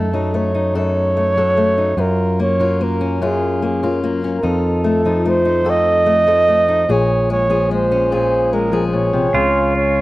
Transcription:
Already playing: steel-string acoustic guitar F#2 D#3 A3 D#4, fingered electric bass F#2, flugelhorn A4
0.13 steel-string acoustic guitar F#3 D#4
0.34 steel-string acoustic guitar A3, flugelhorn C#5
0.55 steel-string acoustic guitar D#4
0.75 steel-string acoustic guitar F#2 A4, flugelhorn C#5
1.17 steel-string acoustic guitar A3
1.37 steel-string acoustic guitar F#3 A4
1.57 steel-string acoustic guitar A3
1.78 steel-string acoustic guitar D#4
1.97 fingered electric bass F#2, steel-string acoustic guitar F#2 F4, flugelhorn A#4
2.39 steel-string acoustic guitar A#3, flugelhorn C#5
2.59 steel-string acoustic guitar F#3 F4
2.81 steel-string acoustic guitar A#3, flugelhorn A#4
3.01 steel-string acoustic guitar C#4
3.21 steel-string acoustic guitar F#2 F4, flugelhorn G#4
3.62 steel-string acoustic guitar A#3, flugelhorn G#4
3.83 steel-string acoustic guitar F#3 F4
4.04 steel-string acoustic guitar A#3
4.24 steel-string acoustic guitar C#4
4.38 flugelhorn A#4
4.43 steel-string acoustic guitar F2 D#4, fingered electric bass F2, flugelhorn A4
4.84 steel-string acoustic guitar A3, flugelhorn A4
5.05 steel-string acoustic guitar F3 D#4
5.25 steel-string acoustic guitar A3, flugelhorn C5
5.45 steel-string acoustic guitar D#4
5.65 steel-string acoustic guitar F2 A4
5.70 flugelhorn D#5
6.06 steel-string acoustic guitar A3
6.27 steel-string acoustic guitar F3 A4
6.48 steel-string acoustic guitar A3
6.69 steel-string acoustic guitar D#4
6.89 fingered electric bass A#1, steel-string acoustic guitar A#2 G#4, flugelhorn C#5
7.30 steel-string acoustic guitar G#3, flugelhorn C#5
7.50 steel-string acoustic guitar F3 G#4
7.71 steel-string acoustic guitar G#3, flugelhorn C5
7.91 steel-string acoustic guitar C#4
8.12 steel-string acoustic guitar A#2 G#4, flugelhorn C5
8.53 steel-string acoustic guitar G#3, flugelhorn A#4
8.72 steel-string acoustic guitar F3 G#4
8.86 flugelhorn C5
8.93 steel-string acoustic guitar A#2, flugelhorn C#5
9.13 steel-string acoustic guitar C3
9.34 fingered electric bass C#2, steel-string acoustic guitar C#3, pedal steel guitar F4
9.76 flugelhorn C#5

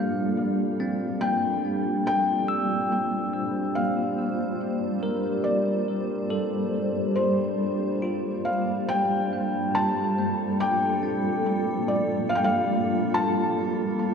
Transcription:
Already playing: ambient pad G3 A#3 F4 A4, synth drone G3 D4, tine electric piano A#3, felt piano F5
0.80 tine electric piano C4
1.21 tine electric piano A#3, felt piano G5
2.06 ambient pad G3, felt piano G5
2.38 ambient pad C5
2.48 tine electric piano E6
3.75 felt piano F5
5.03 tine electric piano A#4
5.44 felt piano D5
6.30 tine electric piano A4
7.16 felt piano C5
8.02 tine electric piano F4
8.45 felt piano F5
8.89 felt piano G5
9.02 ambient pad F4
9.13 ambient pad A4
9.33 tine electric piano A#3
9.75 felt piano A5
10.19 tine electric piano A#3
10.28 ambient pad A#3
10.60 felt piano G5, tine electric piano D6
11.03 tine electric piano C4
11.88 felt piano D5
12.29 felt piano F5
12.35 felt piano G5
12.44 felt piano F5
13.14 felt piano A5

